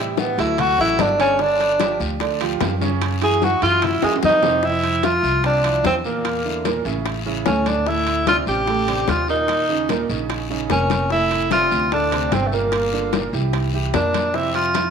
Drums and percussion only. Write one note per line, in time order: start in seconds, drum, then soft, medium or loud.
0.17 high bongo medium
0.17 high conga loud
0.17 short guiro medium
0.38 high bongo soft
0.38 high conga soft
0.38 high timbale medium
0.38 short guiro medium
0.58 high bongo medium
0.58 high conga soft
0.58 low conga medium
0.58 high timbale medium
0.58 long guiro medium
0.78 high bongo soft
0.78 high conga soft
0.99 high bongo medium
0.99 low bongo medium
0.99 high conga loud
0.99 high timbale medium
0.99 low timbale medium
0.99 short guiro medium
1.19 high timbale medium
1.19 short guiro medium
1.39 high bongo medium
1.39 high conga soft
1.39 long guiro medium
1.59 high bongo soft
1.59 high conga soft
1.59 high timbale medium
1.80 high bongo medium
1.80 high conga medium
1.80 high timbale loud
1.80 short guiro medium
2.00 high bongo soft
2.00 high conga soft
2.00 short guiro medium
2.20 high bongo medium
2.20 high conga soft
2.20 high timbale medium
2.20 long guiro medium
2.41 high conga soft
2.41 high timbale medium
2.61 high bongo medium
2.61 low bongo medium
2.61 high conga medium
2.61 high timbale medium
2.61 low timbale medium
2.61 short guiro medium
2.81 high bongo soft
2.81 high conga medium
2.81 short guiro medium
3.02 high bongo medium
3.02 high conga soft
3.02 high timbale loud
3.02 long guiro medium
3.22 high bongo soft
3.22 high conga soft
3.22 high timbale medium
3.42 high bongo medium
3.42 high conga medium
3.42 short guiro medium
3.62 high bongo soft
3.62 high conga soft
3.62 high timbale medium
3.62 short guiro medium
3.82 high bongo medium
3.82 high conga soft
3.82 low conga medium
3.82 high timbale medium
3.82 long guiro medium
4.02 high bongo medium
4.02 high conga soft
4.02 high timbale loud
4.16 high timbale medium
4.23 low bongo medium
4.23 high conga loud
4.23 short guiro medium
4.29 low timbale loud
4.43 low bongo medium
4.43 low timbale loud
4.43 short guiro medium
4.63 high bongo medium
4.63 high conga soft
4.63 long guiro medium
4.83 high bongo soft
4.83 high conga soft
4.83 high timbale medium
5.03 high bongo medium
5.03 high conga medium
5.03 high timbale medium
5.03 short guiro medium
5.24 high bongo soft
5.24 high conga soft
5.24 short guiro medium
5.44 high bongo medium
5.44 high conga soft
5.44 high timbale medium
5.44 long guiro medium
5.64 high bongo soft
5.64 high conga soft
5.64 high timbale medium
5.84 high bongo medium
5.84 low bongo medium
5.84 high conga medium
5.84 high timbale medium
5.84 low timbale medium
5.84 short guiro medium
6.04 high conga soft
6.04 short guiro medium
6.25 high bongo medium
6.25 high conga soft
6.25 high timbale medium
6.25 long guiro medium
6.45 high bongo soft
6.45 high conga soft
6.65 high bongo medium
6.65 high conga medium
6.65 high timbale medium
6.65 short guiro medium
6.85 short guiro medium
7.05 high bongo medium
7.05 high conga soft
7.05 high timbale medium
7.05 long guiro medium
7.26 high bongo soft
7.26 high conga soft
7.46 high bongo medium
7.46 low bongo medium
7.46 high conga medium
7.46 high timbale medium
7.46 low timbale medium
7.46 short guiro medium
7.66 high bongo soft
7.66 high conga medium
7.66 high timbale medium
7.66 short guiro medium
7.86 high bongo medium
7.86 high conga soft
7.86 long guiro medium
8.07 high bongo soft
8.07 high conga soft
8.07 high timbale medium
8.27 high bongo medium
8.27 high conga loud
8.27 high timbale medium
8.27 short guiro medium
8.47 high bongo soft
8.47 high conga soft
8.47 short guiro medium
8.68 high bongo medium
8.68 high conga soft
8.68 high timbale medium
8.68 long guiro medium
8.87 high bongo soft
8.87 high conga soft
8.87 high timbale medium
9.08 high bongo medium
9.08 low bongo medium
9.08 high conga medium
9.08 high timbale medium
9.08 short guiro medium
9.28 high conga soft
9.28 short guiro medium
9.48 high bongo medium
9.48 high conga soft
9.48 high timbale medium
9.48 long guiro medium
9.69 high bongo soft
9.69 high conga soft
9.89 high bongo medium
9.89 high conga medium
9.89 high timbale medium
9.89 short guiro medium
10.10 short guiro medium
10.30 high bongo medium
10.30 high conga soft
10.30 high timbale medium
10.30 long guiro medium
10.50 high bongo soft
10.50 high conga soft
10.70 high bongo medium
10.70 low bongo medium
10.70 high conga medium
10.70 high timbale medium
10.70 short guiro medium
10.90 high bongo medium
10.90 high conga medium
10.90 high timbale medium
10.90 short guiro medium
11.10 high bongo medium
11.10 high conga soft
11.10 long guiro medium
11.31 high bongo soft
11.31 high conga soft
11.31 high timbale medium
11.51 high bongo medium
11.51 high conga medium
11.51 high timbale medium
11.51 short guiro medium
11.71 high bongo soft
11.71 high conga soft
11.71 short guiro medium
11.92 high bongo medium
11.92 high conga soft
11.92 high timbale medium
11.92 long guiro medium
12.12 high bongo soft
12.12 high conga soft
12.12 high timbale medium
12.32 high bongo medium
12.32 low bongo medium
12.32 high conga medium
12.32 high timbale medium
12.32 short guiro medium
12.52 high conga soft
12.52 short guiro medium
12.72 high bongo medium
12.72 high conga soft
12.72 high timbale medium
12.72 long guiro medium
12.92 high bongo soft
12.92 high conga soft
13.13 high bongo medium
13.13 high conga loud
13.13 high timbale medium
13.13 short guiro medium
13.34 short guiro medium
13.53 high bongo medium
13.53 high conga soft
13.53 high timbale medium
13.53 long guiro medium
13.73 high bongo soft
13.73 high conga soft
13.94 high bongo medium
13.94 low bongo medium
13.94 high conga medium
13.94 high timbale medium
13.94 low timbale medium
13.94 short guiro medium
14.14 high bongo soft
14.14 high conga medium
14.14 high timbale medium
14.14 short guiro medium
14.34 high bongo medium
14.34 high conga soft
14.34 long guiro medium
14.54 high bongo soft
14.54 high conga soft
14.54 high timbale medium
14.74 high bongo medium
14.74 high conga medium
14.74 high timbale medium
14.74 short guiro medium